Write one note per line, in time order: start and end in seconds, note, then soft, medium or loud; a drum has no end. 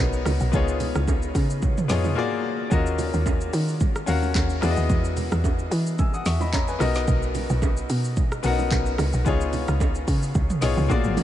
0.00 0.24 B1 loud
0.00 0.52 B3 loud
0.00 0.53 D#4 medium
0.00 0.55 F#4 medium
0.00 0.55 A#4 medium
0.00 0.39 C#5 loud
0.00 0.55 D#5 loud
0.13 shaker medium
0.26 0.40 C#2 medium
0.26 cross-stick loud
0.26 open hi-hat medium
0.26 high bongo medium
0.26 low bongo medium
0.26 shaker loud
0.40 0.52 B1 medium
0.40 shaker medium
0.52 0.92 C#2 loud
0.52 1.40 B3 medium
0.52 1.41 D#4 medium
0.52 1.41 F4 medium
0.52 1.41 G#4 medium
0.52 1.42 C#5 loud
0.52 kick loud
0.52 low conga medium
0.52 shaker medium
0.68 shaker medium
0.80 open hi-hat soft
0.80 low bongo medium
0.80 low conga medium
0.80 shaker medium
0.95 1.32 C#2 loud
0.95 cross-stick medium
0.95 low bongo medium
0.95 shaker medium
1.08 kick medium
1.08 high bongo medium
1.08 shaker medium
1.22 shaker medium
1.35 1.86 C#3 loud
1.35 kick medium
1.35 open hi-hat medium
1.35 high bongo soft
1.35 shaker loud
1.50 shaker medium
1.62 kick loud
1.62 low conga medium
1.62 shaker medium
1.78 mid tom loud
1.78 shaker medium
1.88 2.15 F2 loud
1.88 2.16 B3 medium
1.88 2.16 D#4 medium
1.88 2.15 F4 medium
1.88 2.16 G#4 medium
1.88 2.18 C#5 loud
1.88 snare medium
1.88 open hi-hat medium
1.88 shaker loud
2.04 mid tom medium
2.04 low bongo medium
2.04 shaker soft
2.15 2.61 A#3 loud
2.15 2.61 F4 medium
2.15 2.62 F#4 medium
2.15 2.62 G#4 medium
2.15 2.62 D5 loud
2.70 3.11 D#2 loud
2.70 3.58 C#4 medium
2.70 3.59 F4 medium
2.70 3.59 F#4 medium
2.70 3.60 A#4 medium
2.70 3.60 D#5 loud
2.70 kick loud
2.70 low conga medium
2.70 shaker medium
2.86 shaker medium
2.98 open hi-hat soft
2.98 low bongo medium
2.98 low conga medium
2.98 shaker medium
3.14 3.50 D#2 loud
3.14 low bongo medium
3.14 shaker medium
3.26 kick medium
3.26 high bongo medium
3.26 shaker medium
3.41 shaker medium
3.53 4.04 D#3 loud
3.53 open hi-hat medium
3.53 shaker medium
3.68 shaker medium
3.80 kick loud
3.80 low conga medium
3.80 shaker medium
3.96 cross-stick medium
3.96 shaker medium
4.06 4.33 D#2 medium
4.06 4.62 C#4 medium
4.06 4.61 F#4 medium
4.06 4.63 A#4 medium
4.06 4.62 F5 medium
4.06 4.63 F#5 loud
4.06 open hi-hat medium
4.06 shaker loud
4.23 low bongo medium
4.23 shaker soft
4.35 4.60 D#2 medium
4.35 kick loud
4.35 clap medium
4.35 high bongo medium
4.35 shaker medium
4.50 shaker medium
4.61 4.76 E2 loud
4.61 5.49 B3 medium
4.61 5.50 E4 medium
4.61 5.50 F#4 medium
4.61 5.51 G#4 medium
4.61 4.70 D5 medium
4.61 cross-stick loud
4.61 open hi-hat medium
4.61 high bongo medium
4.61 low bongo medium
4.61 shaker loud
4.71 5.54 D#5 loud
4.77 4.89 D#2 medium
4.77 shaker medium
4.89 5.29 E2 loud
4.89 kick loud
4.89 low conga medium
4.89 shaker medium
5.04 shaker medium
5.17 open hi-hat soft
5.17 low bongo medium
5.17 low conga medium
5.17 shaker medium
5.32 5.68 E2 loud
5.32 cross-stick medium
5.32 low bongo medium
5.32 shaker medium
5.44 kick medium
5.44 high bongo medium
5.44 shaker medium
5.59 shaker medium
5.71 6.22 E3 loud
5.71 open hi-hat medium
5.71 shaker medium
5.87 shaker medium
5.99 6.13 G#5 medium
5.99 6.13 E6 medium
5.99 kick loud
5.99 low conga medium
5.99 shaker medium
6.14 6.26 F#5 medium
6.14 6.25 D#6 medium
6.14 shaker medium
6.26 6.76 E2 loud
6.26 6.41 E5 medium
6.26 6.40 C#6 medium
6.26 snare medium
6.26 open hi-hat medium
6.26 shaker loud
6.41 6.53 D#5 medium
6.41 6.53 B5 medium
6.41 low bongo medium
6.41 shaker soft
6.53 6.68 C#5 medium
6.53 6.67 A#5 medium
6.53 kick loud
6.53 clap medium
6.53 high bongo medium
6.53 shaker medium
6.68 6.94 B4 medium
6.68 6.94 G#5 medium
6.68 shaker medium
6.79 7.06 B1 loud
6.79 7.67 B3 medium
6.79 7.68 D#4 medium
6.79 7.68 F#4 medium
6.79 7.69 A#4 medium
6.79 7.69 D#5 loud
6.79 cross-stick loud
6.79 open hi-hat medium
6.79 high bongo medium
6.79 low bongo medium
6.79 shaker loud
6.95 snare medium
6.95 shaker medium
7.08 7.47 B1 loud
7.08 kick loud
7.08 low conga medium
7.08 shaker medium
7.23 shaker medium
7.35 open hi-hat soft
7.35 low bongo medium
7.35 low conga medium
7.35 shaker medium
7.50 7.87 B1 loud
7.50 low bongo medium
7.50 shaker medium
7.62 kick medium
7.62 high bongo medium
7.62 shaker medium
7.77 shaker medium
7.90 8.40 B2 loud
7.90 open hi-hat medium
7.90 shaker medium
8.04 shaker medium
8.17 kick loud
8.17 low conga medium
8.17 shaker medium
8.32 cross-stick medium
8.32 shaker medium
8.43 8.69 B1 medium
8.43 9.10 B3 medium
8.43 8.51 C#4 medium
8.43 9.11 F#4 medium
8.43 9.11 A#4 medium
8.43 9.12 F#5 loud
8.43 open hi-hat medium
8.43 shaker loud
8.50 9.14 D#4 medium
8.59 low bongo medium
8.59 shaker soft
8.71 8.97 B1 loud
8.71 kick loud
8.71 clap medium
8.71 high bongo medium
8.71 shaker medium
8.86 shaker medium
8.98 9.13 C#2 medium
8.98 cross-stick loud
8.98 open hi-hat medium
8.98 high bongo medium
8.98 low bongo medium
8.98 shaker loud
9.13 9.25 B1 loud
9.13 shaker medium
9.25 9.65 C#2 loud
9.25 10.13 B3 medium
9.25 10.14 D#4 medium
9.25 10.14 F4 medium
9.25 10.14 G#4 medium
9.25 10.15 C#5 loud
9.25 kick loud
9.25 low conga medium
9.25 shaker medium
9.41 shaker medium
9.53 open hi-hat soft
9.53 low bongo medium
9.53 low conga medium
9.53 shaker medium
9.68 10.05 C#2 loud
9.68 cross-stick medium
9.68 low bongo medium
9.68 shaker medium
9.80 kick medium
9.80 high bongo medium
9.80 shaker medium
9.95 shaker medium
10.08 10.33 C#3 loud
10.08 kick medium
10.08 open hi-hat medium
10.08 shaker medium
10.23 shaker medium
10.35 10.49 C#2 loud
10.35 kick loud
10.35 low conga medium
10.35 shaker medium
10.50 mid tom loud
10.50 shaker medium
10.61 10.76 B1 medium
10.61 10.89 B3 medium
10.61 10.89 D#4 medium
10.61 10.87 F4 medium
10.61 10.89 G#4 medium
10.61 10.91 C#5 loud
10.61 snare medium
10.61 open hi-hat medium
10.61 shaker loud
10.77 10.89 C#2 medium
10.77 mid tom medium
10.77 low bongo medium
10.77 shaker soft
10.88 11.03 A#1 loud
10.88 11.23 A#3 loud
10.88 11.23 F4 medium
10.88 11.23 F#4 medium
10.88 11.23 G#4 medium
10.88 11.23 D5 loud
10.88 kick loud
10.88 high tom medium
10.88 high bongo medium
10.88 shaker medium
11.04 11.16 G#1 medium
11.04 mid tom medium
11.04 shaker medium
11.17 mid tom loud
11.17 open hi-hat medium
11.17 high bongo medium
11.17 low bongo medium
11.17 shaker medium